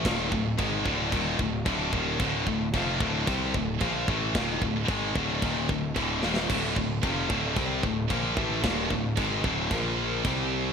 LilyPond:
<<
  \new Staff \with { instrumentName = "Distorted electric guitar" } { \clef bass \time 4/4 \key d \minor \tempo 4 = 112 <ees, bes, ees>8 <d, a,>8 <gis, ees gis>8 <d, a, d>8 <ees, bes, ees>8 <d, a,>8 <d, a, d>8 <ees, bes, ees>8 | <d, a, d>8 <d, a,>8 <f, c f>8 <d, a, d>8 <c g c'>8 <d, a,>8 <bes, f bes>8 <a, e a>8 | <ees, bes, ees>8 <d, a,>8 <gis, ees gis>8 <d, a, d>8 <ees, bes, ees>8 <d, a,>8 <d, a, d>8 <ees, bes, ees>8 | <d, a, d>8 <d, a,>8 <f, c f>8 <d, a, d>8 <c g c'>8 <d, a,>8 <bes, f bes>8 <a, e a>8 |
<ees, bes, ees>8 <d, a,>8 <gis, ees gis>8 <d, a, d>8 <bes, f bes>4 <c g c'>4 | }
  \new Staff \with { instrumentName = "Distorted electric guitar" } { \clef bass \time 4/4 \key d \minor <ees, bes, ees>8 <d, a,>8 <gis, ees gis>8 <d, a, d>8 <ees, bes, ees>8 <d, a,>8 <d, a, d>8 <ees, bes, ees>8 | <d, a, d>8 <d, a,>8 <f, c f>8 <d, a, d>8 <c g c'>8 <d, a,>8 <bes, f bes>8 <a, e a>8 | <ees, bes, ees>8 <d, a,>8 <gis, ees gis>8 <d, a, d>8 <ees, bes, ees>8 <d, a,>8 <d, a, d>8 <ees, bes, ees>8 | <d, a, d>8 <d, a,>8 <f, c f>8 <d, a, d>8 <c g c'>8 <d, a,>8 <bes, f bes>8 <a, e a>8 |
<ees, bes, ees>8 <d, a,>8 <gis, ees gis>8 <d, a, d>8 <bes, f bes>4 <c g c'>4 | }
  \new Staff \with { instrumentName = "Picked electric bass" } { \clef bass \time 4/4 \key d \minor ees,,8 d,,8 gis,,8 d,,8 ees,,8 d,,8 d,,8 ees,,8 | d,,8 d,,8 f,,8 d,,8 c,8 d,,8 bes,,8 a,,8 | ees,,8 d,,8 gis,,8 d,,8 ees,,8 d,,8 d,,8 ees,,8 | d,,8 d,,8 f,,8 d,,8 c,8 d,,8 bes,,8 a,,8 |
ees,,8 d,,8 gis,,8 d,,8 bes,,4 c,4 | }
  \new DrumStaff \with { instrumentName = "Drums" } \drummode { \time 4/4 <cymc bd sn>8 bd8 <cymc bd>8 bd8 <cymc bd>8 bd8 <cymc bd>8 bd8 | <cymc bd>8 bd8 <cymc bd>8 bd8 <cymc bd>8 bd8 <cymc bd>8 bd8 | <cymc bd sn>8 bd8 <cymc bd>8 bd8 <cymc bd>8 bd8 <cymc bd>8 sn16 sn16 | <cymc bd>8 bd8 <cymc bd>8 bd8 <cymc bd>8 bd8 <cymc bd>8 bd8 |
<cymc bd sn>8 bd8 <cymc bd>8 bd8 <cymc bd>4 <cymc bd>4 | }
>>